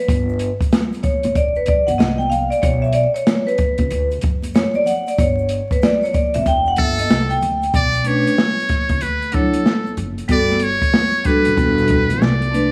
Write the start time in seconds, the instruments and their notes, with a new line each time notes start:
Already playing: vibraphone B4
0.08 upright bass G1, kick, closed hi-hat, shaker
0.29 shaker
0.39 closed hi-hat, shaker
0.61 kick, closed hi-hat, shaker
0.72 snare, closed hi-hat, shaker
0.93 closed hi-hat, shaker
1.03 vibraphone C#5, kick, closed hi-hat, high conga, low conga, shaker
1.23 upright bass A1, closed hi-hat, shaker
1.35 upright bass E1, vibraphone D5, kick, closed hi-hat, shaker
1.55 vibraphone B4, shaker
1.66 vibraphone D5, kick, closed hi-hat, low conga, shaker
1.87 upright bass G1, vibraphone F#5, closed hi-hat, high conga, shaker
1.98 upright bass C2, vibraphone D#5, snare, closed hi-hat, shaker
2.18 vibraphone G5, high conga, shaker
2.30 vibraphone F5, closed hi-hat, low conga, shaker
2.50 vibraphone D5, closed hi-hat, shaker
2.62 upright bass B1, vibraphone C#5, kick, closed hi-hat, shaker
2.82 vibraphone E5, shaker
2.93 vibraphone D5, closed hi-hat, shaker
3.14 vibraphone C#5, closed hi-hat, shaker
3.27 snare, closed hi-hat, shaker
3.47 vibraphone B4, closed hi-hat, shaker
3.58 kick, closed hi-hat, high conga, low conga, shaker
3.78 upright bass C#2, kick, closed hi-hat, shaker
3.90 upright bass D2, closed hi-hat, shaker
4.11 closed hi-hat, shaker
4.21 upright bass F#2, kick, closed hi-hat, low conga, shaker
4.42 closed hi-hat, high conga, shaker
4.54 vibraphone C#5, snare, closed hi-hat, shaker
4.74 vibraphone D5, high conga, shaker
4.86 vibraphone F#5, closed hi-hat, low conga, shaker
5.06 vibraphone D5, closed hi-hat, shaker
5.18 upright bass G1, vibraphone C#5, kick, closed hi-hat, shaker
5.38 shaker
5.49 closed hi-hat, shaker
5.71 vibraphone B4, kick, closed hi-hat, high conga, shaker
5.82 vibraphone D5, snare, closed hi-hat, shaker
6.02 vibraphone C#5, closed hi-hat, shaker
6.13 vibraphone D5, kick, closed hi-hat, high conga, low conga, shaker
6.34 upright bass A1, vibraphone E5, closed hi-hat, shaker
6.45 upright bass E1, vibraphone G5, kick, closed hi-hat, shaker
6.66 vibraphone F#5, shaker
6.76 upright bass G1, muted trumpet A4, vibraphone E5, kick, closed hi-hat, high conga, low conga, shaker
6.98 vibraphone D#5, closed hi-hat, high conga, shaker
7.09 upright bass C2, snare, closed hi-hat, shaker
7.29 vibraphone G5, closed hi-hat, high conga, shaker
7.41 upright bass D2, closed hi-hat, low conga, shaker
7.62 closed hi-hat, shaker
7.73 upright bass B1, muted trumpet D5, kick, closed hi-hat, shaker
7.94 closed hi-hat, shaker
8.04 vibraphone A3 C#4 D4 B4, muted trumpet C#5, closed hi-hat, shaker
8.26 closed hi-hat, shaker
8.38 snare, shaker
8.58 closed hi-hat, shaker
8.69 kick, snare, closed hi-hat, high conga, low conga, shaker
8.89 upright bass C#2, kick, closed hi-hat, shaker
9.01 upright bass D2, muted trumpet B4, closed hi-hat, shaker
9.22 closed hi-hat, shaker
9.32 vibraphone F#3 D4 E4 C#5, muted trumpet A4, kick, closed hi-hat, low conga, shaker
9.54 closed hi-hat, high conga, shaker
9.66 snare, shaker
9.87 high conga, shaker
9.97 upright bass F#1, closed hi-hat, low conga, shaker
10.18 closed hi-hat, shaker
10.28 upright bass G1, vibraphone G3 B3 F#4 A4, muted trumpet D5, kick, closed hi-hat, shaker
10.50 snare, shaker
10.59 muted trumpet C#5, closed hi-hat, shaker
10.82 kick, closed hi-hat, shaker
10.94 snare, shaker
11.15 shaker
11.24 vibraphone G3 D4 F#4 A4, muted trumpet B4, kick, closed hi-hat, high conga, low conga, shaker
11.45 upright bass A1, closed hi-hat, shaker
11.56 upright bass E1, vibraphone G3 D4 F#4 A4, kick, closed hi-hat, shaker
11.78 closed hi-hat, shaker
11.88 kick, closed hi-hat, low conga, shaker
12.10 closed hi-hat, high conga, shaker
12.22 upright bass C2, muted trumpet D5, snare, shaker
12.42 closed hi-hat, high conga, shaker
12.51 vibraphone A3 C4 D4 B4, closed hi-hat, low conga, shaker